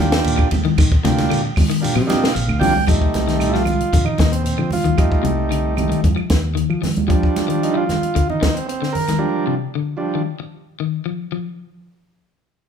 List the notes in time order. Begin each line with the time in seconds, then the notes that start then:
Already playing: D#3 A#3
0.00 D#2 D4 F4 G4, high conga, shekere
0.12 snare, ride bell
0.24 D#2, ride bell, shekere
0.38 muted clean electric guitar stroke, kick, claves
0.51 D#2, ride bell, high conga, low conga, shekere
0.65 D#3, high conga
0.78 D#3, kick, ride bell, claves, shekere
0.92 kick
1.03 D2 C3 A#3 D4 F4 G4, snare, ride bell, high conga, shekere
1.18 snare, ride bell, high conga
1.30 D3, ride bell, claves, shekere
1.56 kick, open hi-hat, high conga, low conga, claves, shekere
1.70 D#3, ride bell
1.81 A#3 D4 F4 G4, ride bell
1.85 shekere
1.95 C3 F3, claves
2.07 A#3 D4 F4 G4 D#5, snare, ride bell, high conga, shekere
2.24 snare
2.33 A#1 F5, muted clean electric guitar stroke, ride bell, shekere
2.48 D2, claves
2.60 C2 F3 A#3 D4 F4 G4 G5, open hi-hat, high conga, low conga, shekere
2.74 high conga
2.87 F2 F3 G3 A3 D#4, kick, closed hi-hat, claves, shekere
3.01 kick
3.14 C2, snare, closed hi-hat, high conga, shekere
3.28 D#3, snare, closed hi-hat
3.39 D#4, closed hi-hat, claves, shekere
3.49 E4 F4
3.54 F3, snare
3.65 closed hi-hat, high conga, low conga, claves, shekere
3.80 closed hi-hat
3.93 F2 D3, kick, closed hi-hat, shekere
4.05 D#4, low conga, claves
4.18 D#2 D#3, kick, snare, closed hi-hat, high conga, shekere
4.32 C4, closed hi-hat
4.44 C4, closed hi-hat, shekere
4.58 D3 F3, claves
4.71 F4, open hi-hat, high conga, low conga, shekere
4.84 D#2 D#3, closed hi-hat, high conga
4.97 F2 G3 A3 D#4, kick, closed hi-hat, claves
5.12 kick
5.23 C2 C3, closed hi-hat, high conga
5.51 D3, closed hi-hat, claves
5.76 G3 A3 D#4, closed hi-hat, high conga, low conga, claves
5.90 D#3, closed hi-hat
6.04 F2, kick, closed hi-hat, high conga
6.16 F3, claves
6.30 D#2, kick, snare, closed hi-hat, high conga
6.55 D#3, closed hi-hat
6.70 F3, claves
6.82 F3, snare, open hi-hat, high conga, low conga
6.96 D#2, closed hi-hat, high conga
7.08 F3 G3 D4, kick, closed hi-hat
7.23 kick
7.36 snare, closed hi-hat, high conga
7.48 D#3, closed hi-hat
7.63 D#4, closed hi-hat
7.73 F3 E4
7.77 F4
7.89 snare, closed hi-hat, high conga, low conga
8.03 closed hi-hat
8.15 D3, kick, closed hi-hat
8.30 D#4, low conga
8.41 D#3, kick, snare, closed hi-hat, high conga
8.54 C4, closed hi-hat
8.69 C4, closed hi-hat
8.82 D3, snare
8.93 A#4, open hi-hat, low conga
9.08 D#3, snare, closed hi-hat, high conga
9.19 F3 G3 D4
9.47 C3
9.75 D3
9.97 F3 G3 D4
10.15 D#3
10.40 muted clean electric guitar stroke
10.80 D#3
11.06 F3
11.32 F3